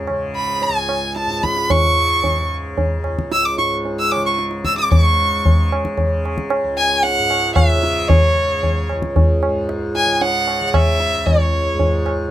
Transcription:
Already playing: tanpura C#2 G#2 C#3
0.07 tanpura C#3, tabla na
0.36 violin B5
0.62 violin G#5, tabla tin
0.68 tanpura C#2
0.89 tabla na
1.16 violin A5, tabla te
1.26 tanpura G#2
1.31 tabla te
1.43 violin B5, tabla ke
1.57 tabla te
1.70 violin C#6, tabla tin, tabla ge
1.84 tanpura C#3
2.24 tabla tin, tabla ge
2.41 tanpura C#3
2.78 tabla tin, tabla ge
2.99 tanpura C#2
3.04 tabla na
3.19 tabla ke
3.32 violin E6, tabla te
3.45 violin D6
3.57 tanpura G#2, violin C#6, tabla te
3.85 tabla tin
3.99 violin E6
4.12 violin D6, tabla na
4.16 tanpura C#3
4.26 violin C#6
4.39 tabla te
4.51 tabla te
4.65 violin E6, tabla ke
4.74 tanpura C#3
4.78 violin D6, tabla te
4.91 tanpura G#2, violin C#6, tabla tin, tabla ge
5.46 tabla tin, tabla ge
5.50 tanpura C#3
5.72 tabla na
5.85 tabla ke
5.97 tabla tin, tabla ge
6.06 tanpura C#3
6.25 tabla na
6.38 tabla ke
6.50 tabla na
6.64 tanpura C#2
6.78 violin G#5
7.03 violin F#5, tabla tin
7.19 tanpura G#2
7.30 tabla na
7.55 violin E5, tabla na, tabla ge
7.75 tanpura C#3
7.83 tabla te
8.08 violin C#5, tabla tin, tabla ge
8.34 tanpura C#3
8.63 tabla tin, tabla ge
8.89 tanpura C#2, tabla na
9.02 tabla ke
9.16 tabla tin, tabla ge
9.43 tabla na
9.48 tanpura G#2
9.69 tabla te
9.95 violin G#5, tabla te
10.06 tanpura C#3
10.15 violin G#5
10.21 violin F#5, tabla tin
10.47 tabla na
10.61 tanpura C#3
10.67 violin F#5
10.74 violin E5, tabla na, tabla ge
11.00 tabla te
11.16 tanpura C#2
11.26 violin C#5, tabla tin, tabla ge
11.75 tanpura G#2
11.79 tabla tin, tabla ge
12.06 tabla na
12.28 tanpura C#3

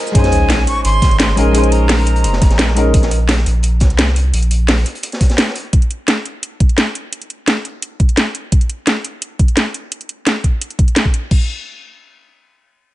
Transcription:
Already playing: grand piano G#3 D#4 F4 A#4 C5
0.07 shaker
0.12 sub bass A#1, grand piano G#3 C#4, flute G#5, kick, closed hi-hat, sub drop
0.16 grand piano D#4 C5
0.24 snare, closed hi-hat
0.32 closed hi-hat
0.49 snare, closed hi-hat
0.58 snare
0.67 flute C#6, closed hi-hat
0.85 sub bass G#1, flute C6, closed hi-hat
1.02 kick, snare, closed hi-hat
1.11 closed hi-hat
1.19 flute C6, snare, closed hi-hat
1.28 snare
1.35 sub bass A#1, grand piano G#3 C#4 D#4 A#4, flute G#5, closed hi-hat
1.51 grand piano G#3 C#4, closed hi-hat
1.55 grand piano D#4 C5
1.64 closed hi-hat
1.72 flute A#5, closed hi-hat
1.89 snare, closed hi-hat, open hi-hat
2.07 closed hi-hat
2.16 closed hi-hat
2.24 sub bass F1, closed hi-hat
2.33 snare
2.41 kick, snare, closed hi-hat
2.50 sub bass A#1, snare, closed hi-hat
2.58 snare, closed hi-hat
2.68 snare
2.75 grand piano G#3 C#4 D#4 A#4, closed hi-hat
2.94 sub bass A#1, kick, closed hi-hat
3.02 snare, closed hi-hat
3.11 closed hi-hat
3.29 snare, closed hi-hat
3.38 snare
3.46 sub bass A#1, closed hi-hat
3.63 closed hi-hat
3.80 sub bass C2, kick, snare, closed hi-hat
3.90 closed hi-hat
3.99 snare, closed hi-hat
4.08 snare
4.16 closed hi-hat
4.33 sub bass A#1, closed hi-hat
4.42 closed hi-hat
4.51 closed hi-hat
4.68 snare, closed hi-hat, open hi-hat
4.86 closed hi-hat
4.95 closed hi-hat
5.03 closed hi-hat
5.12 snare, closed hi-hat
5.21 kick, snare, closed hi-hat
5.30 snare, closed hi-hat
5.38 snare, closed hi-hat
5.48 snare
5.56 closed hi-hat
5.73 kick, closed hi-hat
5.82 closed hi-hat
5.91 closed hi-hat
6.08 snare, closed hi-hat
6.26 closed hi-hat
6.43 closed hi-hat
6.60 kick, closed hi-hat
6.69 closed hi-hat
6.78 snare, closed hi-hat
6.95 closed hi-hat
7.13 closed hi-hat
7.22 closed hi-hat
7.30 closed hi-hat
7.48 snare, closed hi-hat
7.65 closed hi-hat
7.82 closed hi-hat
8.00 kick, closed hi-hat
8.09 closed hi-hat
8.17 snare, closed hi-hat
8.35 closed hi-hat
8.52 kick, closed hi-hat
8.61 closed hi-hat
8.70 closed hi-hat
8.87 snare, closed hi-hat
9.05 closed hi-hat
9.22 closed hi-hat
9.39 kick, closed hi-hat
9.48 closed hi-hat
9.57 snare, closed hi-hat
9.74 closed hi-hat
9.92 closed hi-hat
10.01 closed hi-hat
10.09 closed hi-hat
10.27 snare, closed hi-hat
10.44 kick, closed hi-hat
10.62 closed hi-hat
10.70 closed hi-hat
10.79 kick, closed hi-hat
10.88 closed hi-hat
10.96 snare, closed hi-hat
11.05 kick
11.14 closed hi-hat
11.31 kick, crash

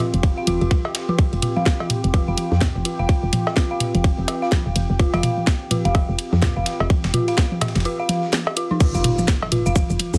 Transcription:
Already playing: ambient pad C4 F4 F5, synth texture G4
0.00 snare, ride
0.14 fm bass F1, closed hi-hat, high tom
0.23 kick, ride
0.37 synth bell F5
0.47 fm bass D#1, synth bell F4, closed hi-hat, high tom, ride
0.61 fm bass F1, synth bell F4, ride
0.71 synth bell F4, kick, high tom, ride
0.85 cowbell
0.95 snare, closed hi-hat, ride
1.09 synth bell F4, high tom
1.18 kick, high tom, ride
1.27 ambient pad G5
1.33 fm bass F1, ride
1.42 synth bell F4, closed hi-hat, mid tom, ride
1.56 synth bell F5, high tom
1.66 kick, snare, ride
1.80 high tom, cowbell
1.90 closed hi-hat, mid tom, ride
2.04 fm bass F1, closed hi-hat
2.14 synth bell F4, kick, high tom, ride
2.28 fm bass F1, synth bell F5
2.38 closed hi-hat, high tom, ride
2.52 fm bass F2, snare
2.61 kick, snare, mid tom, ride, cowbell
2.75 fm bass F1, high tom
2.85 synth bell F4, closed hi-hat, ride
2.99 fm bass F1, synth bell F5, high tom
3.09 kick, ride
3.23 fm bass F1
3.33 closed hi-hat, mid tom, high tom, ride
3.47 snare, cowbell
3.57 synth bell F4, kick, snare, high tom, ride
3.71 synth bell F5
3.80 snare, closed hi-hat, mid tom, ride
3.94 fm bass F1, closed hi-hat, high tom
4.04 kick, ride
4.18 fm bass F1, high tom
4.28 synth bell F4, snare, closed hi-hat, ride, cowbell
4.42 synth bell F5, snare
4.52 kick, snare, high tom, ride
4.66 fm bass D#1
4.76 fm bass F1, closed hi-hat, high tom, ride
4.90 fm bass F1
4.99 synth bell F4, kick, ride
5.14 fm bass F1, synth bell F5, high tom, ride, cowbell
5.23 closed hi-hat, mid tom, ride
5.37 high tom
5.47 kick, snare, ride
5.71 synth bell F4, closed hi-hat, mid tom, high tom, ride
5.85 fm bass F1, synth bell F5, closed hi-hat
5.95 kick, high tom, ride, cowbell
6.09 fm bass F1
6.18 closed hi-hat, ride
6.33 fm bass F2, snare, high tom
6.42 synth bell F4, kick, snare, mid tom, ride
6.56 fm bass F1, synth bell F5, high tom
6.66 snare, closed hi-hat, ride
6.80 fm bass F1, cowbell
6.90 kick, high tom, ride
7.04 fm bass F1, snare, ride
7.14 synth bell F4, closed hi-hat, mid tom, high tom
7.28 synth bell F5, ride
7.38 kick, snare, closed hi-hat, ride
7.52 high tom
7.61 snare, closed hi-hat, mid tom, ride, cowbell
7.68 snare, ride
7.75 fm bass F1, snare, closed hi-hat, high tom, ride
7.80 snare, ride
7.85 synth bell F4, ride
8.00 synth bell F5
8.09 snare, closed hi-hat, high tom, ride
8.23 snare
8.33 snare, high tom, ride
8.47 cowbell
8.56 synth bell F4, closed hi-hat, ride
8.71 synth bell D#4, high tom
8.80 synth bell F4, kick, crash, ride, impact, shaker
8.94 fm bass F1, synth bell F5, ride, shaker
9.04 closed hi-hat, mid tom, ride
9.18 high tom, shaker
9.28 kick, snare, ride, shaker
9.42 high tom, cowbell
9.52 synth bell F4, closed hi-hat, mid tom, ride
9.66 fm bass F1, synth bell F5, shaker
9.76 kick, high tom, ride, shaker
9.90 fm bass F1, shaker
9.99 closed hi-hat, high tom, ride
10.14 fm bass F2, snare, shaker

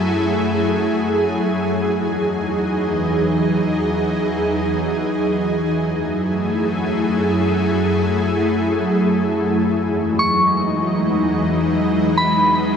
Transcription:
Already playing: ambient pad F#2 F#3 A3 E4 G#4
1.76 ambient pad E2 E3 D#4
5.72 ambient pad F#2 F#3 A3 E4 G#4
9.69 ambient pad E2 E3 F#3 G#3 D#4
10.19 synth bell C#6
12.18 synth bell B5

